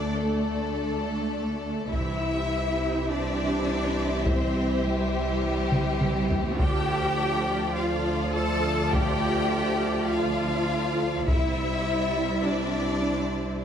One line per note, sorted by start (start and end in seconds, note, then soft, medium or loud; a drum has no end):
0.00 1.89 D2 soft
0.00 1.89 A3 soft
0.00 0.17 D4 medium
0.00 1.89 D4 soft
0.00 1.89 D4 medium
0.00 1.89 A4 soft
0.00 0.16 D5 medium
0.00 1.89 D5 soft
0.16 1.92 A3 medium
0.16 1.93 A4 medium
1.91 6.55 C2 medium
1.91 6.55 E3 soft
1.91 6.41 G3 soft
1.91 6.41 E4 medium
1.91 3.06 E4 medium
1.91 6.55 G4 soft
1.91 6.60 C5 soft
1.91 3.09 E5 medium
1.91 6.59 E5 soft
1.91 taiko medium
3.08 4.25 D4 medium
3.08 4.24 D5 medium
4.25 4.83 C4 medium
4.25 4.84 C5 medium
4.25 taiko medium
4.84 6.59 G3 medium
4.84 6.59 G4 medium
5.72 taiko mid medium
6.01 taiko mid medium
6.30 taiko low medium
6.58 11.24 D2 medium
6.58 11.28 F3 medium
6.58 11.24 A3 medium
6.58 11.23 F4 medium
6.58 11.28 F4 medium
6.58 7.76 G4 loud
6.58 11.24 A4 medium
6.58 11.28 D5 medium
6.58 7.74 G5 medium
6.58 taiko medium
7.75 8.35 F4 medium
7.75 8.33 F5 medium
8.34 8.92 A4 medium
8.34 8.92 A5 medium
8.92 10.10 G4 medium
8.92 10.10 G5 medium
8.92 taiko medium
10.09 11.27 F4 medium
10.09 11.27 F5 medium
11.26 13.65 C2 medium
11.26 13.60 G3 medium
11.26 13.65 G3 medium
11.26 13.60 E4 medium
11.26 12.42 E4 medium
11.26 13.65 E4 medium
11.26 13.60 C5 medium
11.26 12.43 E5 medium
11.26 13.65 E5 soft
11.26 taiko medium
12.45 13.64 D4 medium
12.45 13.65 D5 medium